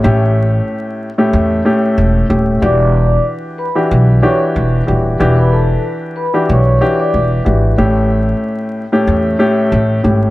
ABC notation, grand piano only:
X:1
M:4/4
L:1/16
Q:"Swing 16ths" 1/4=93
K:Edor
V:1 name="Grand piano"
[A,,A,CG]6 z [A,,A,CG]3 [A,,A,CG]4 [A,,A,CG]2 | [E,DFG]6 z [E,DFG]3 [E,DFG]4 [E,DFG]2 | [E,DFG]6 z [E,DFG]3 [E,DFG]4 [E,DFG]2 | [A,,A,CG]6 z [A,,A,CG]3 [A,,A,CG]4 [A,,A,CG]2 |]